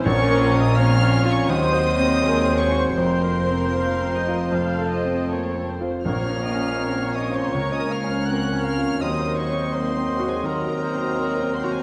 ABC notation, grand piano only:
X:1
M:4/4
L:1/8
Q:1/4=81
K:Bbm
V:1 name="Grand piano"
(3B,,, B D (3C D F (3E,, c C (3B, C G | (3F,, B C (3B, C F (3F,, =A C (3B, C F | (3B,,, B D (3C D F (3D,, B D (3C D F | (3E,, B C (3B, C G (3E,, B C (3B, C G |]